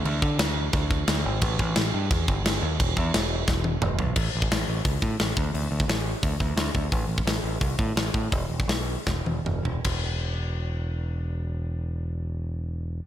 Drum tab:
CC |x---x---x---x---|x---x---x---x---|x---x-----------|x---------------|
HH |----------------|----------------|----------------|----o---o---o---|
SD |----o-------o---|----o-------o---|----o---o-------|----o-------o---|
T1 |----------------|----------------|----------o-----|----------------|
T2 |----------------|----------------|------------o---|----------------|
FT |----------------|----------------|--------------o-|----------------|
BD |--o-----o-o-----|o-o-----o-o-----|o-o-----o-------|o--o----o-o---o-|

CC |----------------|----------------|----------------|x---------------|
HH |o---o---o---o---|o---o---o---o---|o---o-----------|----------------|
SD |----o-------o---|----o-------o---|----o---o-------|----------------|
T1 |----------------|----------------|----------o-----|----------------|
T2 |----------------|----------------|------------o---|----------------|
FT |----------------|----------------|--------------o-|----------------|
BD |---o----o-o---o-|o--o----o-o---o-|o--o----o-------|o---------------|

CC |----------------|
HH |----------------|
SD |----------------|
T1 |----------------|
T2 |----------------|
FT |----------------|
BD |----------------|